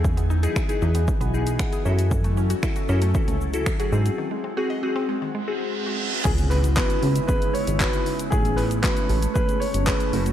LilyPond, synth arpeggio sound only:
\new Staff \with { instrumentName = "Synth arpeggio sound" } { \time 4/4 \key cis \minor \tempo 4 = 116 e16 b16 dis'16 gis'16 e''16 gis'16 dis'16 b16 e16 b16 r8. gis'16 r8 | e16 a16 cis'16 fis'16 e''16 fis'16 cis'16 a16 e16 a16 r8. fis'16 r8 | dis16 gis16 bis16 fis'16 dis''16 fis'16 bis16 gis16 dis16 gis16 r8. fis'16 r8 | r1 |
r1 | }